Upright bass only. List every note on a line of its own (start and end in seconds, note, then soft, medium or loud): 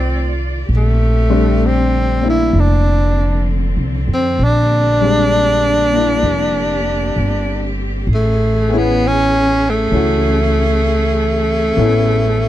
0.00 0.64 C2 medium
0.69 2.50 A#1 medium
2.53 3.73 F1 medium
3.77 4.06 C2 soft
4.08 4.37 F2 medium
4.39 6.20 A#1 medium
6.23 7.12 F1 medium
7.16 8.05 G1 medium
8.07 9.88 A1 medium
9.92 11.73 C#2 medium
11.77 12.48 A1 medium